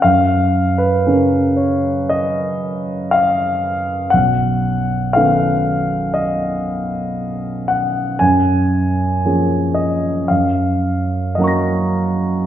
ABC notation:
X:1
M:4/4
L:1/16
Q:1/4=58
K:Gb
V:1 name="Grand piano"
f3 c3 d2 e4 f4 | g4 f4 e6 g2 | a6 e2 f4 [egbd'b']4 |]
V:2 name="Grand piano"
G,,4 [D,DB]12 | C,,4 [E,CD=A]12 | G,,4 [F,B,DA]4 G,,4 [G,B,DB]4 |]